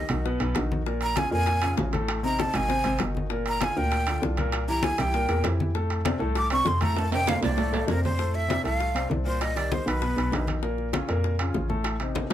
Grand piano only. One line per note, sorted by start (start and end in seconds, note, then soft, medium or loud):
0.10 0.22 D#3 medium
0.10 0.23 D#4 medium
0.10 0.23 F#4 medium
0.25 0.38 B2 medium
0.25 0.38 B3 medium
0.25 0.38 B4 medium
0.40 0.53 B2 medium
0.40 0.53 B3 medium
0.40 0.54 B4 medium
0.55 0.81 D#3 medium
0.55 0.81 D#4 medium
0.55 0.81 F#4 medium
0.86 1.11 A#2 medium
0.86 1.12 A#3 medium
0.86 1.12 A#4 medium
1.17 1.30 C#3 medium
1.17 1.30 C#4 medium
1.17 1.30 F4 medium
1.32 1.57 A#2 medium
1.32 1.57 A#3 medium
1.32 1.57 A#4 medium
1.62 1.75 C#3 medium
1.62 1.76 C#4 medium
1.62 1.76 F4 medium
1.78 1.90 C#3 medium
1.78 1.91 C#4 medium
1.78 1.91 F4 medium
1.93 2.18 A2 medium
1.93 2.18 A3 medium
1.93 2.18 A4 medium
2.23 2.48 C3 medium
2.23 2.49 C4 medium
2.23 2.49 D#4 medium
2.54 2.67 D#3 medium
2.54 2.67 D#4 medium
2.54 2.67 F#4 medium
2.68 2.81 C3 medium
2.68 2.82 C4 medium
2.68 2.82 C5 medium
2.84 2.97 C3 medium
2.84 2.97 C4 medium
2.84 2.97 C5 medium
3.00 3.25 D#3 medium
3.00 3.25 D#4 medium
3.00 3.25 F#4 medium
3.31 3.56 A#2 medium
3.31 3.56 A#3 medium
3.31 3.56 A#4 medium
3.60 3.73 D3 medium
3.60 3.73 D4 medium
3.60 3.73 F4 medium
3.76 4.02 A#2 medium
3.76 4.01 A#3 medium
3.76 4.02 A#4 medium
4.07 4.20 D3 medium
4.07 4.20 D4 medium
4.07 4.20 F4 medium
4.22 4.35 D3 medium
4.22 4.35 D4 medium
4.22 4.35 F4 medium
4.38 4.63 A#2 medium
4.38 4.63 A#3 medium
4.38 4.63 A#4 medium
4.68 4.93 E3 medium
4.68 4.93 E4 medium
4.68 4.93 G4 medium
4.98 5.11 E3 medium
4.98 5.11 E4 medium
4.98 5.11 G4 medium
5.14 5.26 A#2 medium
5.14 5.26 A#3 medium
5.14 5.27 A#4 medium
5.29 5.41 A#2 medium
5.29 5.41 A#3 medium
5.29 5.42 A#4 medium
5.44 5.69 E3 medium
5.44 5.69 E4 medium
5.44 5.69 G4 medium
5.75 6.00 A2 medium
5.75 6.00 A3 medium
5.75 6.00 A4 medium
6.05 6.18 C3 medium
6.05 6.18 C4 medium
6.05 6.18 D4 medium
6.20 6.45 A2 medium
6.20 6.45 A3 medium
6.20 6.45 A4 medium
6.50 6.63 C3 medium
6.50 6.63 C4 medium
6.50 6.64 D4 medium
6.65 6.78 C3 medium
6.65 6.78 C4 medium
6.65 6.79 D4 medium
6.81 7.06 A2 medium
6.81 7.06 A3 medium
6.81 7.06 A4 medium
7.11 7.37 C3 medium
7.11 7.37 C4 medium
7.11 7.37 D4 medium
7.42 7.55 C3 medium
7.42 7.55 C4 medium
7.42 7.55 D4 medium
7.57 7.70 A2 medium
7.57 7.70 A3 medium
7.57 7.70 A4 medium
7.72 7.85 A2 medium
7.72 7.85 A3 medium
7.72 7.85 A4 medium
7.88 8.13 C3 medium
7.88 8.13 C4 medium
7.88 8.13 D4 medium
8.19 8.44 A2 medium
8.19 8.44 A3 medium
8.19 8.44 A4 medium
8.48 8.61 C3 medium
8.48 8.61 C4 medium
8.48 8.62 D4 medium
8.64 8.89 A2 medium
8.64 8.89 A3 medium
8.64 8.90 A4 medium
8.95 9.07 C3 medium
8.95 9.07 C4 medium
8.95 9.08 D4 medium
9.11 9.23 C3 medium
9.11 9.23 C4 medium
9.11 9.23 D4 medium
9.25 9.50 A#2 medium
9.25 9.51 A#3 medium
9.25 9.51 A#4 medium
9.55 9.81 D#3 medium
9.55 9.81 D#4 medium
9.55 9.81 G4 medium
9.86 9.99 D#3 medium
9.86 9.99 D#4 medium
9.86 9.99 F#4 medium
10.01 10.14 B2 medium
10.01 10.14 B3 medium
10.01 10.15 B4 medium
10.17 10.30 B2 medium
10.17 10.30 B3 medium
10.17 10.30 B4 medium
10.32 10.57 D#3 medium
10.32 10.58 D#4 medium
10.32 10.58 F#4 medium
10.62 10.88 A#2 medium
10.62 10.88 A#3 medium
10.62 10.88 A#4 medium
10.93 11.06 C#3 medium
10.93 11.06 C#4 medium
10.93 11.06 F4 medium
11.08 11.34 A#2 medium
11.08 11.34 A#3 medium
11.08 11.34 A#4 medium
11.39 11.52 C#3 medium
11.39 11.52 C#4 medium
11.39 11.52 F4 medium
11.54 11.67 C#3 medium
11.54 11.67 C#4 medium
11.54 11.67 F4 medium
11.69 11.95 A2 medium
11.69 11.95 A3 medium
11.69 11.95 A4 medium
12.01 12.26 C3 medium
12.01 12.26 C4 medium
12.01 12.26 D#4 medium